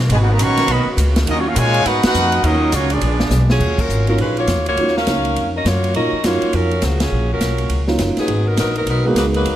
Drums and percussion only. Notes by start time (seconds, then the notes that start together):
0.10 ride
0.39 hi-hat pedal, ride
0.57 snare, ride
0.68 ride
0.98 hi-hat pedal, ride
1.16 snare, ride
1.27 ride
1.56 hi-hat pedal, ride
1.74 ride
1.86 ride
2.03 snare, ride
2.14 hi-hat pedal
2.32 ride
2.44 ride
2.72 hi-hat pedal, ride
2.90 ride
3.01 ride
3.20 snare
3.30 snare, hi-hat pedal
3.50 snare
3.60 kick, crash
3.78 kick, crash
3.90 hi-hat pedal
4.07 ride
4.18 ride
4.37 ride
4.47 snare, hi-hat pedal, ride
4.66 ride
4.77 ride
4.88 snare
4.97 snare
5.07 snare, hi-hat pedal, ride
5.25 ride
5.36 ride
5.66 snare, hi-hat pedal, ride
5.84 ride
5.94 ride
6.24 snare, hi-hat pedal, ride
6.42 ride
6.53 ride
6.71 ride
6.82 snare, hi-hat pedal, ride
7.00 snare, ride
7.41 snare, hi-hat pedal, ride
7.58 ride
7.70 ride
7.88 snare
7.99 snare, hi-hat pedal, ride
8.17 snare, ride
8.28 ride
8.57 snare, hi-hat pedal, ride
8.76 ride
8.87 ride
9.16 snare, hi-hat pedal, ride
9.34 ride
9.45 ride